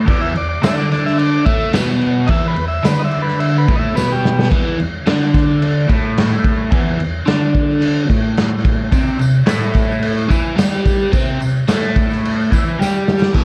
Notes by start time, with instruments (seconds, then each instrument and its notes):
0.05 overdriven electric guitar E2 E3, kick, crash
0.10 transistor combo organ D5
0.21 transistor combo organ E5
0.35 overdriven electric guitar E2, transistor combo organ D5, crash
0.49 transistor combo organ D5
0.62 overdriven electric guitar D3 D4, transistor combo organ E5, snare, tambourine, crash
0.78 transistor combo organ D5
0.92 transistor combo organ D5, snare, crash
1.06 transistor combo organ E5, snare
1.18 transistor combo organ D5, crash
1.46 overdriven electric guitar A2 A3, transistor combo organ E5, kick, crash
1.73 overdriven electric guitar B2 B3, snare, tambourine, crash
2.01 crash
2.27 overdriven electric guitar E2 E3, transistor combo organ D#5 E5, kick, crash
2.48 transistor combo organ B4
2.56 overdriven electric guitar E2, crash
2.68 transistor combo organ E5
2.83 overdriven electric guitar D3 D4, transistor combo organ B4, snare, tambourine, crash
2.99 transistor combo organ D#5
3.05 transistor combo organ E5
3.11 crash
3.22 transistor combo organ B4
3.27 snare
3.39 transistor combo organ E5, crash
3.58 transistor combo organ B4
3.68 overdriven electric guitar A2 A3, kick, crash
3.75 transistor combo organ D#5 E5
3.94 overdriven electric guitar B2 B3, transistor combo organ B4, snare, tambourine
4.12 transistor combo organ G4
4.25 snare
4.39 snare
4.50 overdriven electric guitar E2 E3, kick, crash
4.78 overdriven electric guitar E2, crash
5.06 overdriven electric guitar D3 D4, snare, crash
5.34 kick, snare, crash
5.62 crash
5.88 overdriven electric guitar A2 A3, kick, crash
6.17 snare, crash
6.44 kick, crash
6.71 overdriven electric guitar E2 E3, kick, crash
6.99 overdriven electric guitar E2, crash
7.26 overdriven electric guitar D3 D4, snare, crash
7.54 kick, crash
7.69 snare
7.82 crash
8.08 overdriven electric guitar A2 A3, kick, crash
8.37 snare, crash
8.65 kick, crash
8.92 overdriven electric guitar C3 C4, kick, tambourine, crash
9.08 tambourine
9.19 overdriven electric guitar C3, tambourine, crash
9.35 tambourine
9.46 overdriven electric guitar A2 A3, snare, tambourine, crash
9.63 tambourine
9.74 kick, snare, crash
9.78 tambourine
9.92 tambourine
10.03 tambourine, crash
10.18 tambourine
10.29 overdriven electric guitar E3 E4, kick, tambourine, crash
10.56 overdriven electric guitar G3 G4, snare, tambourine, crash
10.86 kick, tambourine, crash
11.01 tambourine
11.12 overdriven electric guitar C3 C4, kick, tambourine, crash
11.28 tambourine
11.40 overdriven electric guitar C3, tambourine, crash
11.57 tambourine
11.68 overdriven electric guitar A2 A3, snare, tambourine, crash
11.83 tambourine
11.96 kick, tambourine, crash
12.11 snare, tambourine
12.25 tambourine, crash
12.40 tambourine
12.51 overdriven electric guitar E3 E4, kick, tambourine, crash
12.69 tambourine
12.79 overdriven electric guitar G3 G4, snare, tambourine
12.96 tambourine
13.08 snare, tambourine
13.22 snare
13.33 overdriven electric guitar E2 B2 E3, kick, crash